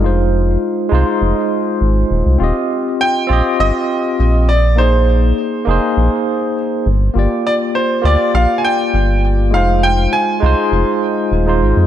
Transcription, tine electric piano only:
\new Staff \with { instrumentName = "Tine electric piano" } { \time 4/4 \key f \dorian \tempo 4 = 101 <aes ees' f' c''>4. <aes ees' f' c''>2~ <aes ees' f' c''>8 | <c' f' g' ees''>4. <c' f' g' ees''>2 r8 | <bes ees' aes' c''>4. <bes ees' aes' c''>2 r8 | <bes f' g' d''>4. <bes f' g' d''>2~ <bes f' g' d''>8 |
<aes ees' f' c''>4. <aes ees' f' c''>4.~ <aes ees' f' c''>16 <aes ees' f' c''>8. | }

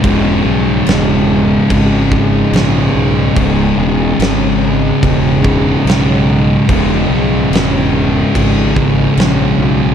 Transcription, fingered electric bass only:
\new Staff \with { instrumentName = "Fingered electric bass" } { \clef bass \time 4/4 \key cis \minor \tempo 4 = 72 e,,8 b,,8 e,,4 gis,,4 ais,,8 b,,8 | cis,,8 e,,8 gis,,4 e,,4 b,,4 | e,,8 b,,8 e,,4 gis,,4 ais,,8 b,,8 | }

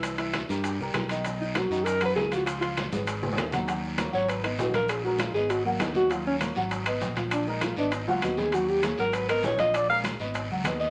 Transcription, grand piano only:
\new Staff \with { instrumentName = "Grand piano" } { \time 4/4 \key cis \mixolydian \tempo 4 = 198 <e e' e''>8 <e e' e''>4 <g g' bes'>4 <g g' bes'>4 <dis dis' dis''>8 | <dis dis''>4 <fis fis' ais'>8 <dis dis' dis''>4 <fis fis' ais'>4 <eis eis' eis''>8~ | <eis eis' eis''>8 <eis eis' eis''>4 <gis gis' b'>4 <gis gis' b'>4 <fis fis' fis''>8 | \key ees \minor <ges ges' ges''>4 <bes bes' des''>8 <ges ges' ges''>4 <ces' ces'' ees''>8 <ces' ces'' ees''>8 <f f' f''>8~ |
<f f' f''>8 <aes aes' bes'>4 <ces' ces'' ees''>4 <ges ges' ges''>8 <ces' ces'' ees''>4 | <ges ges' ges''>4 <bes bes' des''>8 <ges ges' ges''>4 <ces' ces'' ees''>8 <ces' ces'' ees''>8 <f f' f''>8~ | <f f' f''>8 <aes aes' bes'>4 <ces' ces'' ees''>4 <ges ges' ges''>8 <ces' ces'' ees''>4 | <ges ges' ges''>4 <bes bes' des''>8 <ges ges' ges''>4 <ces' ces'' ees''>8 <ces' ces''>8 <f f' f''>8~ |
<f f' f''>8 <aes aes' bes'>4 <ces' ces'' ees''>4 <ges ges' ges''>8 <ces' ces'' ees''>4 | }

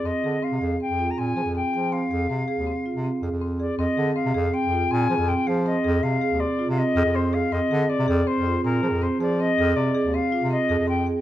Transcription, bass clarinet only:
\new Staff \with { instrumentName = "Bass clarinet" } { \clef bass \time 5/4 \key f \dorian \tempo 4 = 161 f,16 r16 d8 r16 c16 f,8 r16 f,8. bes,8 f16 f,8 r16 f8~ | f8 f,8 c8 r16 ees,8 r8 c8 r16 f,16 f,4~ f,16 | f,16 r16 d8 r16 c16 f,8 r16 f,8. bes,8 f16 f,8 r16 f8~ | f8 f,8 c8 r16 ees,8 r8 c8 r16 f,16 f,4~ f,16 |
f,16 r16 d8 r16 c16 f,8 r16 f,8. bes,8 f16 f,8 r16 f8~ | f8 f,8 c8 r16 ees,8 r8 c8 r16 f,16 f,4~ f,16 | }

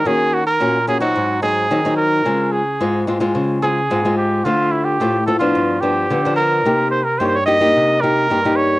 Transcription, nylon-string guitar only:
\new Staff \with { instrumentName = "Nylon-string guitar" } { \time 4/4 \key des \lydian \tempo 4 = 109 << { <bes des' ges'>8. r16 <bes des' ges'>16 r16 <bes des' ges'>16 <ges c' ees'>8. <ges c' ees'>8 <ges c' ees'>16 <ges c' ees'>8. | <aes c' f'>8. r16 <aes c' f'>8 <aes c' f'>16 <aes c' f'>8. <aes c' f'>16 r16 <aes c' f'>16 <aes c' f'>8. | <a c' f'>4 <a c' f'>16 r16 <a c' f'>16 <f ces' d'>8. <f b d'>8 <f b d'>16 <f b d'>8. | <bes ees' g'>8. r16 <bes ees' g'>16 r16 <bes ees' g'>16 <bes ees' g'>8. <bes ees' g'>8 <bes ees' g'>16 <bes ees' g'>8. | } \\ { ees4 bes,4 aes,4 ees4 | des4 aes,4 des4 aes,4 | d4 a,4 g,4 d4 | c4 g,4 c4 g,4 | } >> }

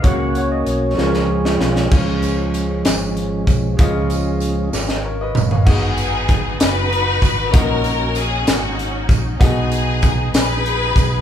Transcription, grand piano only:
<<
  \new Staff \with { instrumentName = "Grand piano" } { \time 6/8 \key cis \mixolydian \tempo 4. = 64 << { r2. | r2. | r2 <ais' cis''>16 <b' dis''>8 <cis'' eis''>16~ | <cis'' eis''>16 r2 r8. |
r2. | r2. | } \\ { <ais cis' fis' cis''>4. <gis cis' eis' cis''>4. | <gis cis' eis' cis''>2. | <gis cis' eis' dis''>2. | <b dis' fis' gis' dis''>2. |
<cis' dis' fis' ais' dis''>2. | <b dis' fis' gis' dis''>2. | } >> }
  \new Staff \with { instrumentName = "Grand piano" } { \clef bass \time 6/8 \key cis \mixolydian cis4. cis4. | cis4. r4. | cis4. r4. | gis,4. r4. |
ais,4. r4. | b,4. r4. | }
>>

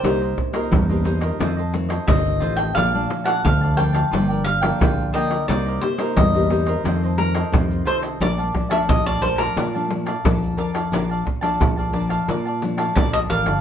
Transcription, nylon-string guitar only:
\new Staff \with { instrumentName = "Nylon-string guitar" } { \time 4/4 \key bes \major \tempo 4 = 88 << { <bes ees' g'>8. <bes ees' g'>8 <bes ees' g'>16 <bes ees' g'>8 <ees a c'>16 r16 <ees a c'>16 r16 <ees a c'>4 | <f a d'>16 <f a d'>8. <f a d'>8 <f a d'>16 r16 <f bes d'>8 r16 <f bes d'>8. <f bes d'>16 r16 | <bes ees' g'>8 <bes ees' g'>16 <bes ees' g'>8 <bes ees' g'>16 <bes ees' g'>16 r16 <ees a c'>8 <ees a c'>16 r16 <ees c'>4 | <f a d'>16 r16 <f a d'>16 <f a d'>8. <f a d'>8. <f a d'>16 <f a d'>16 r16 <f d'>8. r16 |
<f d'>8 r16 <f d'>8. <f d'>8. r16 <f a d'>8 <f d'>4 | } \\ { c4 g,4 f,4 c4 | bes,4 f,4 g,4 d4 | c4 g,4 f,4 c4 | bes,4 f,4 bes,4 f,4 |
bes,4 f,4 bes,4 f,4 | } >> }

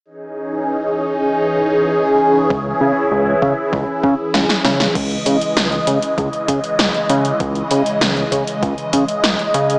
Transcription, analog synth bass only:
\new Staff \with { instrumentName = "Analog synth bass" } { \clef bass \time 4/4 \key cis \minor \tempo 4 = 98 r1 | cis,8 cis8 cis,8 cis8 cis,8 cis8 cis,8 cis8 | cis,8 cis8 cis,8 cis8 cis,8 cis8 cis,8 cis8 | cis,8 cis8 cis,8 cis8 cis,8 cis8 cis,8 cis8 | }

